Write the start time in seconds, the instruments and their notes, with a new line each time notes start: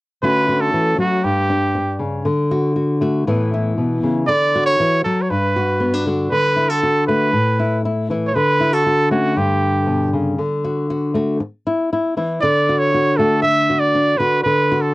0.22 nylon-string guitar D3 A3 C#4 F#4, trumpet B4
0.48 nylon-string guitar F#4
0.61 trumpet A4
0.73 nylon-string guitar E3
0.98 nylon-string guitar F#3, trumpet F#4
1.24 nylon-string guitar G2, trumpet G4
1.50 nylon-string guitar D4
1.75 muted nylon-string guitar stroke
1.99 nylon-string guitar C#3
2.25 nylon-string guitar D3
2.51 nylon-string guitar F#4
2.76 nylon-string guitar F#4
3.01 nylon-string guitar A3 F#4
3.27 nylon-string guitar A2 E3 B3 E4
3.54 nylon-string guitar E4
3.78 nylon-string guitar B2
4.03 nylon-string guitar C#3
4.27 nylon-string guitar D3, trumpet D5
4.55 nylon-string guitar F#4
4.66 trumpet C#5
4.80 nylon-string guitar E3
5.04 nylon-string guitar F#3, trumpet A4
5.22 trumpet C#5
5.30 nylon-string guitar G2, trumpet B4
5.56 nylon-string guitar F#4
5.80 nylon-string guitar B3
5.94 nylon-string guitar D4
6.06 nylon-string guitar D3 F#4
6.30 nylon-string guitar D3, trumpet B4
6.56 nylon-string guitar E4
6.70 nylon-string guitar F#4, trumpet A4
6.83 nylon-string guitar F#4
7.08 nylon-string guitar A3 F#4, trumpet B4
7.33 nylon-string guitar A2
7.60 nylon-string guitar E4
7.85 nylon-string guitar E4
8.10 nylon-string guitar E3 E4
8.27 trumpet C#5
8.35 nylon-string guitar D3, trumpet B4
8.60 nylon-string guitar E4
8.73 nylon-string guitar F#4, trumpet A4
8.86 nylon-string guitar F#4
9.11 nylon-string guitar A3 C#4, trumpet F#4
9.36 nylon-string guitar G2, trumpet G4
9.86 nylon-string guitar B2
10.13 nylon-string guitar C#3
10.38 nylon-string guitar D3
10.64 nylon-string guitar F#4
10.90 nylon-string guitar F#4
11.14 nylon-string guitar A3 F#4
11.40 muted nylon-string guitar stroke
11.67 nylon-string guitar E4
11.93 nylon-string guitar E4
12.17 nylon-string guitar E3 E4
12.41 nylon-string guitar D3, trumpet D5
12.69 nylon-string guitar F#4
12.79 trumpet C#5
12.94 nylon-string guitar F#4
13.17 nylon-string guitar A3 F#4, trumpet A4
13.42 trumpet E5, muted nylon-string guitar stroke
13.70 nylon-string guitar F#4
13.80 trumpet D5
13.95 nylon-string guitar D4
14.18 nylon-string guitar D3 F#4, trumpet B4
14.43 nylon-string guitar D3, trumpet B4
14.72 nylon-string guitar F#4
14.81 trumpet A4